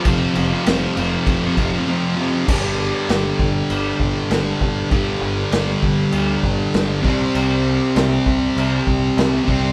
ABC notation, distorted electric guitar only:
X:1
M:4/4
L:1/16
Q:1/4=99
K:Fmix
V:1 name="Distorted electric guitar" clef=bass
[F,,C,F,]2 [F,,C,F,] [C,F,] [F,,C,F,]2 [F,,C,F,]3 [C,F,] [F,,C,F,] [C,F,] [F,,C,F,]2 [F,,C,F,] [C,F,] | [K:Cmix] [G,,D,G,]16 | [G,,D,G,]12- [G,,D,G,]2 [C,G,C]2- | [C,G,C]12- [C,G,C]2 [C,G,C]2 |]